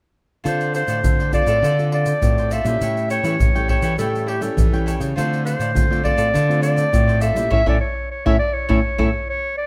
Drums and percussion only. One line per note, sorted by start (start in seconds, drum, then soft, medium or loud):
0.46 pandeiro medium
0.46 shaker medium
0.46 surdo soft
0.61 pandeiro soft
0.61 shaker soft
0.75 pandeiro medium
0.75 shaker medium
0.88 pandeiro medium
0.88 shaker medium
1.04 pandeiro medium
1.04 shaker medium
1.04 surdo medium
1.20 pandeiro soft
1.20 shaker soft
1.33 pandeiro medium
1.33 shaker medium
1.33 surdo medium
1.47 pandeiro medium
1.47 shaker medium
1.64 pandeiro medium
1.64 shaker medium
1.64 surdo medium
1.79 pandeiro soft
1.79 shaker soft
1.92 pandeiro medium
2.06 pandeiro medium
2.06 shaker medium
2.22 pandeiro medium
2.22 shaker medium
2.22 surdo medium
2.38 pandeiro soft
2.38 shaker soft
2.51 pandeiro medium
2.51 shaker medium
2.66 pandeiro medium
2.66 shaker medium
2.81 pandeiro medium
2.81 shaker medium
2.81 surdo medium
2.97 pandeiro soft
2.97 shaker soft
3.10 pandeiro medium
3.10 shaker medium
3.24 pandeiro medium
3.24 shaker medium
3.40 pandeiro medium
3.40 shaker medium
3.40 surdo loud
3.56 pandeiro soft
3.56 shaker soft
3.69 pandeiro medium
3.69 surdo medium
3.82 pandeiro medium
3.82 shaker medium
3.99 pandeiro medium
3.99 shaker medium
3.99 surdo medium
4.15 pandeiro soft
4.15 shaker soft
4.28 pandeiro medium
4.42 pandeiro medium
4.42 shaker medium
4.58 pandeiro medium
4.58 shaker medium
4.58 surdo loud
4.74 pandeiro soft
4.74 shaker soft
4.88 pandeiro medium
4.88 shaker medium
5.01 pandeiro medium
5.01 shaker medium
5.18 pandeiro medium
5.18 shaker medium
5.18 surdo medium
5.33 pandeiro soft
5.33 shaker soft
5.47 pandeiro medium
5.47 shaker medium
5.60 pandeiro medium
5.60 shaker medium
5.76 pandeiro medium
5.76 shaker medium
5.76 surdo medium
5.92 pandeiro soft
5.92 shaker soft
6.05 pandeiro medium
6.05 surdo medium
6.18 pandeiro medium
6.18 shaker medium
6.35 pandeiro medium
6.35 shaker medium
6.35 surdo medium
6.51 pandeiro soft
6.51 shaker soft
6.63 pandeiro medium
6.63 shaker medium
6.78 pandeiro medium
6.78 shaker medium
6.93 pandeiro medium
6.93 shaker medium
6.93 surdo medium
7.09 pandeiro soft
7.09 shaker soft
7.21 pandeiro medium
7.21 shaker medium
7.36 pandeiro medium
7.36 shaker medium
7.52 surdo medium
7.67 surdo loud
8.26 surdo loud
8.69 surdo medium
8.99 surdo medium